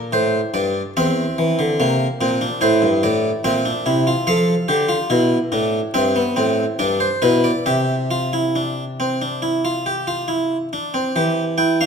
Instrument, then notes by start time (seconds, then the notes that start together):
harpsichord
Already playing: A#2 D4
0.13 A2 C5
0.54 G2 D5
0.97 E2 C4 E5
1.38 E3
1.59 D3
1.80 C3 A#3
2.21 A#2 C4
2.41 D4
2.61 A2 E4 C5
2.82 G2
3.03 A2 D5
3.44 A#2 C4 E5
3.65 D4
3.86 C3 E4
4.07 F4
4.27 F3 A4 F5
4.68 D3 G4
4.89 F4
5.10 B2 E4
5.52 A2 D4
5.94 G2 C4 E5
6.16 B3
6.36 A2 C4
6.79 G2 D4 D5
7.00 C5
7.22 B2 E4 B4
7.44 D5
7.66 C3 G4 E5
8.11 F4
8.33 E4
8.56 D4
9.00 C4
9.22 D4
9.42 E4
9.65 F4
9.86 G4
10.07 F4
10.28 E4
10.73 D4
10.94 C4
11.16 E3 G4
11.58 E4 G5
11.81 D4 F5